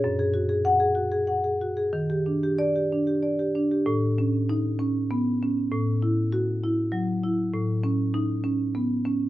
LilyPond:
\new Staff \with { instrumentName = "Marimba" } { \time 6/8 \key a \lydian \tempo 4. = 65 << { r4 fis''8 r4. | r4 d''8 r4. | r4 dis'8 r4. | r4 fis'8 r4. |
r4 dis'8 r4. | } \\ { fis,16 gis'16 fis'16 gis'8 gis'16 fis'16 gis'16 fis''16 gis'16 fis'16 gis'16 | dis16 g'16 d'16 g'8 g'16 d'16 g'16 d''16 g'16 d'16 g'16 | a,8 cis'8. r16 cis'8 b8 cis'8 | a,8 e'8. r16 e'8 fis8 e'8 |
a,8 cis'8. r16 cis'8 b8 cis'8 | } >> }